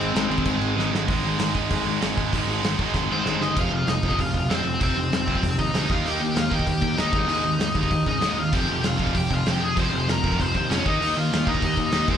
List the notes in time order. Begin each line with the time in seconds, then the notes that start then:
Already playing: G#2 D#3 G#3 C4 C5
0.00 G#1, crash
0.14 G#1 G#2 D#3 G#3, snare, crash
0.29 G#1 G#2 D#3 G#3, crash
0.38 kick
0.45 G#1 G#2 D#3 G#3, kick, crash
0.60 G#1, crash
0.77 G#1 G#2 D#3 G#3, snare
0.91 G#1 G#2 D#3 G#3, snare
1.08 G#1 G#2 D#3 G#3, kick, open hi-hat
1.24 G#1 G#2 D#3 G#3
1.38 G#1 G#2 D#3 G#3, snare, open hi-hat
1.52 G#2 D#3 G#3, kick
1.69 G#1 G#2 D#3 G#3, kick, open hi-hat
1.85 G#1 G#2 D#3 G#3
2.01 G#1 G#2 D#3 G#3, snare, open hi-hat
2.17 G#1 G#2 D#3 G#3, kick
2.33 G#1 G#2 D#3 G#3, kick, open hi-hat
2.47 G#1 G#2 D#3 G#3
2.63 G#1 G#2 D#3 G#3, snare, open hi-hat
2.78 G#1 G#2 D#3 G#3, kick
2.94 G#1 G#2 D#3 G#3, kick, snare
3.10 G#1 G#2 D#3 G#3 C4 C5
3.25 G#1 G#2 D#3 G#3, snare
3.39 G1 G#2 D#3 G#3 D#4 D#5, snare
3.56 F1 F2 C3 F3 F4 F5, kick, crash
3.70 F1 F2 C3
3.86 F1 F2 C3 D#4 D#5, snare, open hi-hat
4.02 F1 F2 C3 F3, kick
4.11 kick
4.17 F1 F2 C3 F4 F5, kick, open hi-hat
4.34 F1 F2 C3, kick
4.47 F1 F2 C3 F3 C4, snare, open hi-hat
4.52 C5
4.64 F1 F2 C3
4.80 F1 F2 C3 F3 C4 C5, kick, open hi-hat
4.96 F1 F2 C3
5.11 F1 F2 C3, snare, open hi-hat
5.27 F1 F2 C3 F3, kick
5.35 kick
5.43 F1 F2 C3, kick, open hi-hat
5.59 D#2 F2 C3 D#4 D#5, kick
5.73 D2 F2 C3 F3, snare, open hi-hat
5.89 D#2 D#3 A#3 D#4 F4 F5, kick
6.05 D#2 D#3 A#3 D#4 G4, open hi-hat
6.10 G5
6.21 D#2 D#3 A#3
6.35 D#2 D#3 A#3 F4, snare, open hi-hat
6.39 F5
6.50 D#2 D#3 A#3 D#4 G4, kick
6.55 G5
6.59 kick
6.66 D#2 D#3 A#3, kick, open hi-hat
6.81 D#2 D#3 A#3, kick
6.97 D#2 D#3 A#3 D#4 D#5, snare, open hi-hat
7.12 D#2 G#2 D#3 G#3, kick
7.26 D#2 G#2 D#3 G#3 D#4, open hi-hat
7.33 D#5
7.43 D#2 G#2 D#3
7.59 D#2 G#2 D#3, snare, open hi-hat
7.75 D#2 G#2 D#3 G#3, kick
7.83 kick
7.91 D#2 G#2 D#3, kick, open hi-hat
8.05 G#2 C#3 D#3 D#4, kick
8.09 D#5
8.20 D#2 G#2 D#3 G#3, snare, open hi-hat
8.36 D#2 G#2 D#3 F4
8.40 F5
8.53 F1 F2 C3 F3 G4 G5, kick, open hi-hat
8.68 F1 F2 C3
8.83 F1 F2 C3 F4 F5, snare, open hi-hat
8.99 F1 F2 C3 F3, kick
9.07 kick
9.15 F1 F2 C3 G4 G5, kick, open hi-hat
9.30 F1 F2 C3 F4, kick
9.35 F5
9.46 F1 F2 C3 F3 G4 G5, snare, open hi-hat
9.61 F1 F2 C3 G#4 G#5
9.76 F1 F2 C3 F3 C5, kick, open hi-hat
9.81 C6
9.92 F1 F2 C3
10.07 F1 F2 C3 A#4, snare, open hi-hat
10.12 A#5
10.23 F1 F2 C3 F3, kick
10.32 kick
10.39 F1 F2 C3 C5 C6, kick, open hi-hat
10.54 D#2 F2 C3 C4 C5, kick
10.69 F2 C3 F3 C#4 C#5, snare, open hi-hat
10.85 D#2 D#3 A#3 D#4, kick
10.90 D#5
11.00 D#2 D#3 A#3 D#4, open hi-hat
11.16 D#2 D#3 A#3 F4 F5
11.31 D#2 D#3 A#3, snare, open hi-hat
11.45 D#2 D#3 A#3 D#4, kick
11.50 D#5
11.55 kick
11.61 D#2 D#3 A#3 D#4, kick, open hi-hat
11.65 D#5
11.76 D#2 D#3 A#3, kick
11.85 D#4 D#5
11.91 D#2 D#3 A#3 D#4, snare, open hi-hat
12.07 D#2 G#2 D#3 G#3 C4, kick
12.11 C5